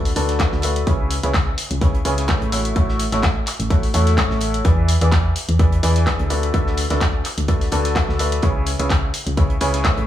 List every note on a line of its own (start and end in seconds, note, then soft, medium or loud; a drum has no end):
0.00 0.12 D2 loud
0.05 open hi-hat medium
0.16 0.48 D2 medium
0.16 0.37 D3 loud
0.16 0.37 F#4 medium
0.16 0.37 A4 medium
0.16 0.37 B4 medium
0.16 0.37 D5 medium
0.16 0.37 A5 loud
0.16 closed hi-hat medium
0.16 open hi-hat loud
0.29 snare soft
0.29 closed hi-hat medium
0.40 0.60 D3 medium
0.40 0.60 F#4 medium
0.40 0.60 A4 medium
0.40 0.60 B4 medium
0.40 0.60 D5 medium
0.40 0.60 E5 medium
0.40 kick loud
0.40 snare loud
0.40 clap loud
0.40 closed hi-hat medium
0.52 0.83 D2 loud
0.52 snare soft
0.62 0.84 F#4 medium
0.62 0.84 A4 medium
0.62 0.84 B4 medium
0.62 0.84 D5 medium
0.62 0.84 E5 medium
0.62 closed hi-hat medium
0.62 open hi-hat loud
0.76 closed hi-hat medium
0.87 1.19 C#2 loud
0.87 1.12 C#3 loud
0.87 1.12 E4 medium
0.87 1.12 G#4 medium
0.87 1.12 B4 medium
0.87 1.12 C#5 medium
0.87 1.12 E5 loud
0.87 kick loud
0.87 closed hi-hat medium
1.11 closed hi-hat medium
1.11 open hi-hat loud
1.23 1.54 C#2 medium
1.23 1.48 C#3 medium
1.23 1.48 E4 medium
1.23 1.48 G#4 medium
1.23 1.48 B4 medium
1.23 1.48 C#5 medium
1.23 1.48 E5 medium
1.23 closed hi-hat medium
1.34 kick loud
1.34 snare loud
1.34 clap loud
1.34 closed hi-hat medium
1.58 closed hi-hat medium
1.58 open hi-hat loud
1.71 2.02 C#2 loud
1.71 closed hi-hat medium
1.81 1.98 C#3 medium
1.81 1.98 E4 medium
1.81 1.98 G#4 medium
1.81 1.98 B4 medium
1.81 1.98 C#5 medium
1.81 1.98 E5 medium
1.81 kick loud
1.81 closed hi-hat medium
1.95 closed hi-hat soft
2.05 2.37 C#2 medium
2.05 2.26 C#3 loud
2.05 2.26 E4 medium
2.05 2.26 G#4 medium
2.05 2.26 B4 medium
2.05 2.26 C#5 medium
2.05 2.26 G#5 loud
2.05 closed hi-hat medium
2.05 open hi-hat loud
2.18 snare soft
2.18 closed hi-hat medium
2.28 2.49 A3 medium
2.28 2.49 E4 medium
2.28 2.49 G#4 medium
2.28 2.49 B4 medium
2.28 2.49 C#5 medium
2.28 2.49 E5 loud
2.28 kick loud
2.28 snare loud
2.28 clap loud
2.28 closed hi-hat medium
2.41 2.72 A1 loud
2.41 closed hi-hat soft
2.52 2.73 A3 medium
2.52 2.73 E4 medium
2.52 2.73 F#4 medium
2.52 2.73 A4 medium
2.52 2.73 C#5 medium
2.52 2.73 E5 medium
2.52 closed hi-hat medium
2.52 open hi-hat loud
2.65 closed hi-hat medium
2.76 3.08 A1 loud
2.76 3.01 A3 loud
2.76 3.01 E4 medium
2.76 3.01 F#4 medium
2.76 3.01 A4 medium
2.76 3.01 C#5 medium
2.76 3.01 E5 loud
2.76 kick loud
2.76 closed hi-hat medium
2.89 snare soft
2.99 closed hi-hat medium
2.99 open hi-hat loud
3.11 3.43 A1 medium
3.11 3.37 A3 medium
3.11 3.37 E4 medium
3.11 3.37 F#4 medium
3.11 3.37 A4 medium
3.11 3.37 C#5 medium
3.11 3.37 E5 medium
3.11 snare medium
3.11 closed hi-hat medium
3.23 kick loud
3.23 snare loud
3.23 clap loud
3.23 closed hi-hat soft
3.23 closed hi-hat medium
3.47 clap soft
3.47 closed hi-hat medium
3.47 open hi-hat loud
3.60 3.90 A1 loud
3.60 closed hi-hat medium
3.60 closed hi-hat soft
3.70 3.87 A3 medium
3.70 3.87 E4 medium
3.70 3.87 F#4 medium
3.70 3.87 A4 medium
3.70 3.87 C#5 medium
3.70 3.87 E5 medium
3.70 kick loud
3.70 closed hi-hat medium
3.83 open hi-hat medium
3.94 4.26 E2 medium
3.94 4.62 A3 loud
3.94 4.62 E4 medium
3.94 4.62 F#4 medium
3.94 4.62 A4 medium
3.94 4.62 C#5 medium
3.94 4.62 E5 loud
3.94 closed hi-hat medium
3.94 open hi-hat loud
4.07 snare soft
4.07 closed hi-hat medium
4.17 kick loud
4.17 snare loud
4.17 clap loud
4.17 closed hi-hat soft
4.17 closed hi-hat medium
4.30 4.61 A1 loud
4.30 snare soft
4.41 closed hi-hat medium
4.41 open hi-hat loud
4.54 closed hi-hat medium
4.65 4.97 E2 loud
4.65 4.90 E3 loud
4.65 4.90 E4 medium
4.65 4.90 G#4 medium
4.65 4.90 B4 medium
4.65 4.90 D5 medium
4.65 4.90 E5 loud
4.65 kick loud
4.65 closed hi-hat medium
4.88 closed hi-hat medium
4.88 open hi-hat loud
5.01 5.32 E2 medium
5.01 5.26 E3 medium
5.01 5.26 E4 medium
5.01 5.26 G#4 medium
5.01 5.26 B4 medium
5.01 5.26 D5 medium
5.01 5.26 E5 medium
5.01 closed hi-hat medium
5.12 kick loud
5.12 snare loud
5.12 clap loud
5.12 closed hi-hat medium
5.12 closed hi-hat soft
5.36 closed hi-hat medium
5.36 open hi-hat loud
5.49 5.79 E2 loud
5.49 closed hi-hat medium
5.59 5.76 E3 medium
5.59 5.76 E4 medium
5.59 5.76 G#4 medium
5.59 5.76 B4 medium
5.59 5.76 D5 medium
5.59 5.76 E5 medium
5.59 kick loud
5.59 closed hi-hat medium
5.72 closed hi-hat soft
5.83 6.15 E2 medium
5.83 6.04 E3 loud
5.83 6.04 E4 medium
5.83 6.04 G#4 medium
5.83 6.04 B4 medium
5.83 6.04 D5 medium
5.83 6.04 G#5 loud
5.83 closed hi-hat medium
5.83 open hi-hat loud
5.96 snare soft
5.96 closed hi-hat medium
6.07 6.27 D3 medium
6.07 6.27 E4 medium
6.07 6.27 G#4 medium
6.07 6.27 B4 medium
6.07 6.27 D5 medium
6.07 6.27 E5 medium
6.07 kick loud
6.07 snare loud
6.07 clap loud
6.07 closed hi-hat medium
6.19 6.50 D2 loud
6.19 closed hi-hat soft
6.30 6.51 D3 medium
6.30 6.51 F#4 medium
6.30 6.51 A4 medium
6.30 6.51 B4 medium
6.30 6.51 D5 medium
6.30 6.51 E5 medium
6.30 closed hi-hat medium
6.30 open hi-hat loud
6.43 closed hi-hat medium
6.54 6.86 D2 loud
6.54 6.79 D3 loud
6.54 6.79 F#4 medium
6.54 6.79 A4 medium
6.54 6.79 B4 medium
6.54 6.79 D5 medium
6.54 6.79 E5 loud
6.54 kick loud
6.54 closed hi-hat medium
6.67 snare soft
6.77 closed hi-hat medium
6.77 open hi-hat loud
6.90 7.21 D2 medium
6.90 7.15 D3 medium
6.90 7.15 F#4 medium
6.90 7.15 A4 medium
6.90 7.15 B4 medium
6.90 7.15 D5 medium
6.90 7.15 E5 medium
6.90 snare medium
6.90 closed hi-hat medium
7.01 kick loud
7.01 snare loud
7.01 clap loud
7.01 closed hi-hat medium
7.25 clap soft
7.25 closed hi-hat medium
7.25 open hi-hat loud
7.38 7.68 D2 loud
7.38 closed hi-hat medium
7.38 closed hi-hat soft
7.48 7.65 D3 medium
7.48 7.65 F#4 medium
7.48 7.65 A4 medium
7.48 7.65 B4 medium
7.48 7.65 D5 medium
7.48 7.65 E5 medium
7.48 kick loud
7.48 closed hi-hat medium
7.61 open hi-hat medium
7.72 8.04 D2 medium
7.72 7.93 D3 loud
7.72 7.93 F#4 medium
7.72 7.93 A4 medium
7.72 7.93 B4 medium
7.72 7.93 D5 medium
7.72 7.93 A5 loud
7.72 closed hi-hat medium
7.72 open hi-hat loud
7.85 snare soft
7.85 closed hi-hat medium
7.95 8.16 D3 medium
7.95 8.16 F#4 medium
7.95 8.16 A4 medium
7.95 8.16 B4 medium
7.95 8.16 D5 medium
7.95 8.16 E5 medium
7.95 kick loud
7.95 snare loud
7.95 clap loud
7.95 closed hi-hat medium
8.08 8.39 D2 loud
8.08 snare medium
8.19 8.40 F#4 medium
8.19 8.40 A4 medium
8.19 8.40 B4 medium
8.19 8.40 D5 medium
8.19 8.40 E5 medium
8.19 closed hi-hat medium
8.19 open hi-hat loud
8.32 closed hi-hat medium
8.43 8.75 C#2 loud
8.43 8.68 C#3 loud
8.43 8.68 E4 medium
8.43 8.68 G#4 medium
8.43 8.68 B4 medium
8.43 8.68 C#5 medium
8.43 8.68 E5 loud
8.43 kick loud
8.43 closed hi-hat medium
8.66 closed hi-hat medium
8.66 open hi-hat loud
8.79 9.10 C#2 medium
8.79 9.04 C#3 medium
8.79 9.04 E4 medium
8.79 9.04 G#4 medium
8.79 9.04 B4 medium
8.79 9.04 C#5 medium
8.79 9.04 E5 medium
8.79 closed hi-hat medium
8.89 kick loud
8.89 snare loud
8.89 clap loud
8.89 closed hi-hat medium
9.14 closed hi-hat medium
9.14 open hi-hat loud
9.27 9.57 C#2 loud
9.27 closed hi-hat medium
9.37 9.54 C#3 medium
9.37 9.54 E4 medium
9.37 9.54 G#4 medium
9.37 9.54 B4 medium
9.37 9.54 C#5 medium
9.37 9.54 E5 medium
9.37 kick loud
9.37 closed hi-hat medium
9.50 closed hi-hat soft
9.61 9.93 C#2 medium
9.61 9.82 C#3 loud
9.61 9.82 E4 medium
9.61 9.82 G#4 loud
9.61 9.82 B4 loud
9.61 9.82 C#5 medium
9.61 9.82 G#5 loud
9.61 closed hi-hat medium
9.61 open hi-hat loud
9.74 snare soft
9.74 closed hi-hat medium
9.85 10.05 A3 medium
9.85 10.05 E4 medium
9.85 10.05 G#4 medium
9.85 10.05 B4 medium
9.85 10.05 C#5 medium
9.85 10.05 E5 medium
9.85 kick loud
9.85 snare loud
9.85 clap loud
9.85 closed hi-hat medium
9.97 10.07 A1 loud
9.97 closed hi-hat soft